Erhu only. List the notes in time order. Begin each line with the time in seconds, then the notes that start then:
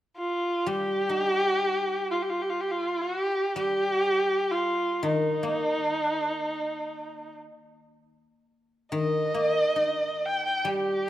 0.18 F4
0.67 G4
2.11 F4
2.22 G4
2.30 F4
2.42 G4
2.50 F4
2.61 G4
2.71 F4
3.01 F#4
3.20 G4
3.57 G4
4.51 F4
5.04 D#4
8.93 D#5
10.25 G5
10.45 G5
10.68 G4